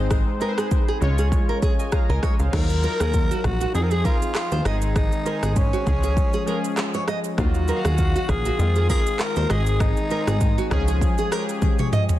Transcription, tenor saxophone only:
2.54 3.46 A#4 loud
3.45 3.75 F#4 medium
3.75 3.84 G#4 loud
3.83 3.92 A#4 medium
3.91 4.07 G#4 loud
4.05 4.35 F4 loud
4.36 4.68 F4 loud
4.66 4.96 D#4 medium
4.96 5.58 D#4 medium
5.57 7.08 C#4 medium
7.39 8.31 F#4 loud
8.29 8.89 G#4 loud
8.90 9.22 G#4 loud
9.20 9.52 A#4 loud
9.50 9.82 G#4 loud
9.81 11.02 D#4 loud

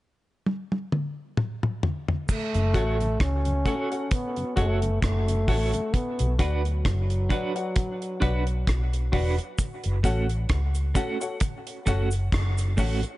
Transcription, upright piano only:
2.74 2.92 F#4 medium
2.74 2.93 A4 medium
2.74 2.93 C#5 medium
2.74 2.93 F#5 loud
3.65 3.84 F#4 medium
3.65 3.84 A4 medium
3.65 3.84 C#5 medium
3.65 3.84 F#5 medium
3.90 4.05 F#4 medium
3.90 4.06 A4 medium
3.90 4.06 C#5 medium
3.90 4.06 F#5 medium
4.36 4.45 C#5 soft
4.36 4.44 F#5 soft
4.56 4.75 F#4 medium
4.56 4.75 A4 medium
4.56 4.75 C#5 medium
4.56 4.75 F#5 loud
5.48 5.66 F#4 medium
5.48 5.66 A4 medium
5.48 5.66 C#5 medium
5.48 5.67 F#5 loud
6.39 6.57 F#4 medium
6.39 6.57 B4 medium
6.39 6.58 D5 medium
6.39 6.58 F#5 medium
7.29 7.48 F#4 medium
7.29 7.48 B4 medium
7.29 7.48 D5 medium
7.29 7.49 F#5 medium
7.55 7.70 F#4 medium
7.55 7.70 B4 medium
7.55 7.70 D5 medium
7.55 7.70 F#5 medium
8.01 8.09 D5 soft
8.01 8.09 F#5 soft
8.21 8.39 F#4 medium
8.21 8.39 B4 medium
8.21 8.40 D5 medium
8.21 8.40 F#5 loud
9.12 9.31 F#4 medium
9.12 9.31 B4 medium
9.12 9.31 D5 medium
9.12 9.31 F#5 medium
10.04 10.22 F#4 medium
10.04 10.22 A4 medium
10.04 10.23 C#5 medium
10.04 10.23 F#5 loud
10.95 11.13 F#4 medium
10.95 11.14 A4 medium
10.95 11.14 C#5 medium
10.95 11.14 F#5 loud
11.20 11.35 F#4 medium
11.20 11.35 A4 medium
11.20 11.35 C#5 medium
11.20 11.36 F#5 medium
11.67 11.75 C#5 soft
11.67 11.75 F#5 soft
11.87 12.05 F#4 medium
11.87 12.05 A4 medium
11.87 12.05 C#5 medium
11.87 12.05 F#5 loud
12.78 12.96 F#4 medium
12.78 12.96 A4 medium
12.78 12.96 C#5 medium
12.78 12.97 F#5 medium

